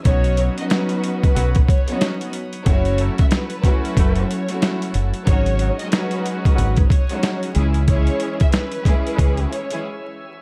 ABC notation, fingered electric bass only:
X:1
M:4/4
L:1/16
Q:"Swing 16ths" 1/4=92
K:C#m
V:1 name="Fingered electric bass" clef=bass
B,,,3 z4 z B,,,2 z6 | F,,,3 z4 z F,,,2 z4 F,,, z | G,,,3 z4 z G,,,2 z4 C,,2- | C,,2 z6 C,,2 z6 |]